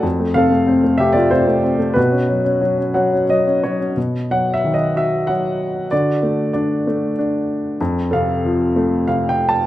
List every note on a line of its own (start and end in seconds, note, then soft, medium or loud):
0.03 1.92 F2 soft
0.19 0.49 A3 soft
0.34 0.98 C3 soft
0.34 0.97 A4 medium
0.34 0.95 F5 medium
0.51 0.82 A3 soft
0.67 1.62 C4 soft
0.84 1.13 A3 soft
0.98 1.30 C3 medium
0.98 1.15 G4 medium
0.98 1.14 E5 medium
1.13 1.45 A3 soft
1.13 1.30 F4 medium
1.13 1.31 D5 medium
1.31 1.95 C3 soft
1.31 1.93 F4 medium
1.31 1.98 C5 medium
1.47 1.78 A3 soft
1.63 1.95 C4 soft
1.79 1.96 A3 soft
1.94 3.92 B2 medium
1.94 3.25 F#4 soft
1.94 3.23 B4 medium
2.11 2.43 C#4 soft
2.29 2.60 F#3 soft
2.44 2.76 C#4 soft
2.61 2.93 F#3 soft
2.78 3.11 C#4 soft
2.94 3.28 F#3 medium
2.94 3.26 F#5 medium
3.13 3.45 C#4 soft
3.29 3.63 F#3 soft
3.29 3.61 D#5 medium
3.47 3.78 C#4 soft
3.63 3.96 F#3 soft
3.63 3.95 C#5 medium
3.80 3.96 C#4 soft
3.97 5.88 B2 soft
4.31 5.27 F#3 soft
4.31 4.53 F#5 medium
4.54 4.76 E5 medium
4.64 5.88 D#3 soft
4.74 4.94 D#5 medium
4.96 5.89 F#4 soft
4.96 5.30 E5 medium
5.27 5.90 F#3 soft
5.27 5.87 F#5 medium
5.91 7.76 D3 soft
5.91 6.83 F#4 soft
5.91 6.51 D5 medium
6.23 6.86 A3 soft
6.53 7.17 D4 soft
6.53 7.13 D5 medium
6.87 7.77 A3 soft
7.19 7.79 D4 soft
7.81 9.67 F2 medium
8.11 9.06 C3 medium
8.11 9.03 A4 soft
8.11 9.05 F5 medium
8.45 9.67 F3 soft
8.76 9.67 A3 soft
9.08 9.67 C3 soft
9.08 9.30 F5 medium
9.29 9.49 G5 medium
9.49 9.67 A5 medium